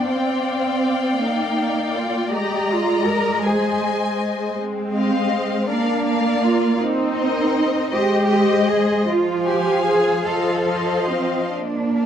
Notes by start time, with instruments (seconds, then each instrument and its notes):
Already playing: violin section D5
0.09 cello section C4, viola section C4, violin section F5 G5
1.21 viola section A#3, cello section D#4
1.95 cello section F4
2.33 viola section G#3, cello section G4, violin section D#5 A#5
2.70 cello section F4
3.08 cello section A#4
3.46 cello section G#4, violin section C5 D#5 G#5
4.58 viola section G#3, cello section C4
4.93 violin section C5 D#5 F5
5.67 viola section A#3, cello section D4, violin section A#4 D5 F5
6.03 violin section A#4 D5
6.08 violin section F5
6.43 cello section F4
6.75 cello section F4
6.81 viola section C4, cello section D#4
7.14 violin section A#4 C5 D#5
7.89 viola section G#3, cello section G4, violin section C5 D#5
8.28 violin section C5 D#5
8.69 cello section G#4
9.07 viola section F3, cello section F4
9.44 cello section G4, violin section C5 F5 G#5
9.85 cello section G#4
10.24 viola section F3, cello section A4, violin section C5 D#5 F5
10.67 violin section C5 D#5 F5
11.09 cello section C4
11.54 viola section A#3, cello section D4
11.99 violin section A#4 D5 F5